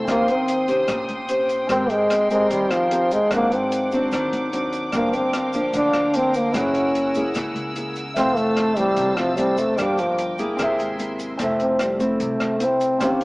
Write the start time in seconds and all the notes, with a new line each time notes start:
Already playing: C6
0.04 D#2 D#3 C4 G4 G5 D#6, kick, cross-stick, closed hi-hat, shaker
0.08 A#3 C#4 G4 C5 F5
0.28 C4, closed hi-hat, shaker
0.48 closed hi-hat, shaker
0.68 C#4 G4 C5, closed hi-hat, shaker
0.88 A#1 A#2, kick, cross-stick, closed hi-hat, shaker
1.09 A#1, closed hi-hat, shaker
1.28 C#4 G4 C5, closed hi-hat, shaker
1.49 closed hi-hat, shaker
1.67 G#1 G#3 C4 G4 A#4 C6, kick, cross-stick, closed hi-hat, shaker
1.73 G5
1.89 G#3, closed hi-hat, shaker
2.10 cross-stick, closed hi-hat, shaker
2.30 G#3 C4 G4 A#4, closed hi-hat, shaker
2.50 D#2 D#3 G3, kick, closed hi-hat, shaker
2.70 D#2 F3, cross-stick, closed hi-hat, shaker
2.91 C4 G4 A#4, closed hi-hat
3.11 G#3, closed hi-hat, shaker
3.27 G#1 D4 G#4 C5 F#5, kick, cross-stick, closed hi-hat
3.31 G#2 F#3 A#3 C4 D4 C5 F#5 D6, shaker
3.51 C4, closed hi-hat, shaker
3.72 closed hi-hat, shaker
3.92 F#3 C4 D4, closed hi-hat, shaker
4.12 D#2 D#3, kick, cross-stick, closed hi-hat, shaker
4.32 D#2, closed hi-hat, shaker
4.53 F#3 C4 D4, closed hi-hat, shaker
4.73 closed hi-hat, shaker
4.91 G1 G2 F3 A#3 D4 G4 A#4 F5 G5, kick, cross-stick, closed hi-hat, shaker
4.95 A#3 D4 F5
5.13 C4, closed hi-hat, shaker
5.33 cross-stick, closed hi-hat, shaker
5.53 F3 A#3 D4, closed hi-hat, shaker
5.73 D2 D3 D4, kick, closed hi-hat, shaker
5.93 D2, cross-stick, closed hi-hat, shaker
6.14 F3 A#3 C4 D4, closed hi-hat
6.34 A#3, closed hi-hat, shaker
6.52 F#1 F#3 A#3 E4 G#4 F#5 G#5 E6, kick, cross-stick, closed hi-hat, shaker
6.56 C#4 E4 G#4 A#4 F#5
6.74 closed hi-hat, shaker
6.95 closed hi-hat
7.14 A#3 E4 G#4, closed hi-hat, shaker
7.34 C#2 C#3, kick, cross-stick, closed hi-hat, shaker
7.55 C#2, closed hi-hat, shaker
7.75 A#3 E4 G#4, closed hi-hat, shaker
7.95 closed hi-hat, shaker
8.14 F1 F2 E3 A3 C4 A4 C5 E5 A5, kick, cross-stick, closed hi-hat, shaker
8.18 C5 F5
8.36 A3, closed hi-hat, shaker
8.57 cross-stick, closed hi-hat
8.76 E3 G3 A3 C4, closed hi-hat, shaker
8.96 C2 C3, kick, closed hi-hat, shaker
9.16 C2 F3, cross-stick, closed hi-hat, shaker
9.37 E3 G3 A3 C4, closed hi-hat, shaker
9.57 A3, closed hi-hat, shaker
9.76 G1 G2 F3 G3 A#3 D4 G4 A#4 G5 D6, kick, cross-stick, closed hi-hat, shaker
9.82 F5
9.98 F3, closed hi-hat, shaker
10.18 closed hi-hat, shaker
10.38 A#3 E4 G#4, closed hi-hat, shaker
10.56 C2 C3 C4 G#4 A#4 E5 G#5 C6, kick, cross-stick, closed hi-hat, shaker
10.63 E5
10.79 G#1, closed hi-hat, shaker
10.99 A#3 E4 G#4, closed hi-hat, shaker
11.19 closed hi-hat, shaker
11.37 F1 F3 A3 C4 E4 A4, kick, cross-stick, closed hi-hat, shaker
11.44 E5
11.60 C4, closed hi-hat, shaker
11.79 G3, cross-stick, closed hi-hat, shaker
11.99 A3 C4 E4, closed hi-hat, shaker
12.20 C2 C3, kick, closed hi-hat, shaker
12.40 C2, cross-stick, closed hi-hat, shaker
12.59 A3 C4 E4, closed hi-hat, shaker
12.64 C4
12.81 closed hi-hat, shaker
12.99 D#2 D#3 C4 C#4 G4 C5, kick, cross-stick, closed hi-hat, shaker
13.04 F5
13.21 closed hi-hat